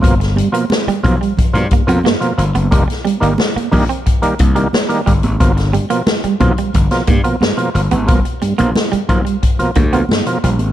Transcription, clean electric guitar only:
X:1
M:4/4
L:1/16
Q:1/4=90
K:Flyd
V:1 name="Clean electric guitar"
z2 G, ^A, z G, z G, z2 A, B, A, z2 B, | z2 G, _B, z B, z C z2 B, G, z2 G, z | z2 G, ^A, z G, z G, z2 A, B, A, z2 B, | z2 G, ^A, z G, z G, z2 A, B, z2 G, z |]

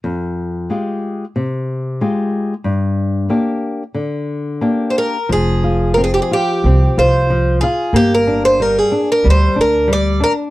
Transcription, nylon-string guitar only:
X:1
M:4/4
L:1/8
Q:1/4=92
K:Fdor
V:1 name="Nylon-string guitar"
F,,2 [A,FG]2 C,2 [A,FG]2 | G,,2 [B,DG]2 D,2 [B,DG]2 | F, F C F C F F, F | B, D G, D G, D G, D |]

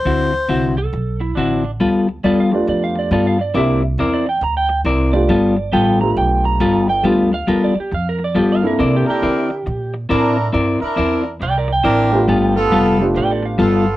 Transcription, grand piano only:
X:1
M:4/4
L:1/8
Q:"Swing" 1/4=137
K:Gmix
V:1 name="Grand piano"
z8 | z3 [A,B,DFG]3 z2 | [_B,CDEG] z6 [A,=B,DFG] | z3 [A,B,DFG]3 z2 |
[A,B,DFG] z6 [_B,CDEA]- | [_B,CDEA]2 z6 | z6 z [A,B,DFG]- | [A,B,DFG]2 z [A,B,DFG]3 z2 |]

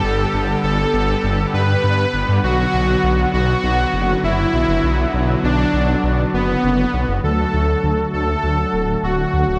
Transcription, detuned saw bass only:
X:1
M:4/4
L:1/16
Q:1/4=100
K:D
V:1 name="Detuned saw bass" clef=bass
G,,, z G,,, z G,,, z G,,, z G,,, z G,, z G,, z G,,, G,, | B,,, z B,,, z B,,, z B,,, z B,,, z F,,, z F,,, z B,,, F,,, | B,,, z B,,, z B,,, z B,,, z B,,, z F,,, z F,,, z B,,, F,,, | D,, z D,, z D,, z D,, z D,, z D,,, z D,,, z D,, D,,, |]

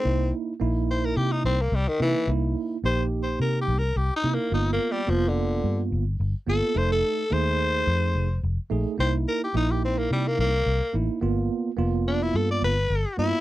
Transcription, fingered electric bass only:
X:1
M:4/4
L:1/16
Q:1/4=107
K:Gdor
V:1 name="Fingered electric bass" clef=bass
C,,2 z2 B,,,4 C,2 C,,2 C,, z C, z | C,,2 z2 B,,,4 C,2 C,,2 C,, z C, z | G,,,2 z2 F,,,4 G,,2 G,,,2 G,,, z G,,, z | F,,,2 z2 _E,,4 F,,2 F,,,2 F,,, z B,,, z |
C,,2 z2 B,,,4 C,2 C,,2 C,, z A,,, z | G,,,2 z2 F,,,4 G,,2 G,,,2 G,,, z G,, z |]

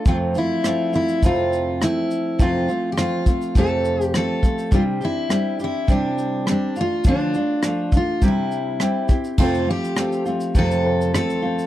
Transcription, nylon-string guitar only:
X:1
M:4/4
L:1/8
Q:"Swing 16ths" 1/4=103
K:F
V:1 name="Nylon-string guitar"
[F,,C,F,A,CF] [F,A,CF] [F,A,CF] [F,A,CF] [F,,C,F,A,CF]2 [F,A,C]2 | [F,,C,F,A,CF] [F,A,CF] [F,A,CF] [F,A,CF] [F,,C,F,A,CF]2 [F,A,CF] [F,A,CF] | [C,G,CDG] [CDG] [G,CDG] [CDG] [C,G,CDG]2 [G,CDG] [A,DF] | [D,F,A,DF] [A,DF] [F,A,DF] [A,DF] [C,G,CEG]2 [G,CEG] [CEG] |
[F,,C,F,A,CF] [F,A,CF] [F,A,CF] [F,A,CF] [F,,C,F,A,CF]2 [F,A,CF] [F,A,CF] |]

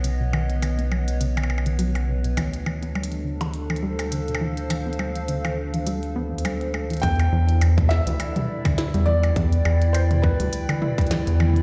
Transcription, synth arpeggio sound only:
X:1
M:4/4
L:1/16
Q:"Swing 16ths" 1/4=103
K:Ephr
V:1 name="Synth arpeggio sound" clef=bass
^C, B,, ^D, z D, B, ^F, z C, D, z D, F, z C, B,, | E, z E, B, G, z D, E, z E, G, z D, B,, E, z | E, B, G, z D, E, z E, G, z B, E,, G, z A, E, | E, z E, z E,, z2 E, E, G, z D, E G, E, z |
E, z E,, z2 E, E, G, z D, E G, E, z E, z |]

